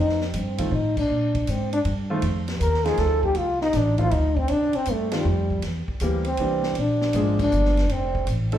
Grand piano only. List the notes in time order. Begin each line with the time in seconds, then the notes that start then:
0.58 D#3 F3 A3 C4 F4
2.10 D#3 F3 A3 C4 F4
2.84 F3 A3 C4 D#4 F4
3.98 D#3 F3 A3 C4 F4
5.13 D#3 F3 A3 C4 F4
6.01 E3 G3 A#3 C4 G4
6.39 E3 G3 A#3 C4 D4
7.14 F3 G#3 A#3 D4 G#4
8.52 F3 A3 C4 D#4 A4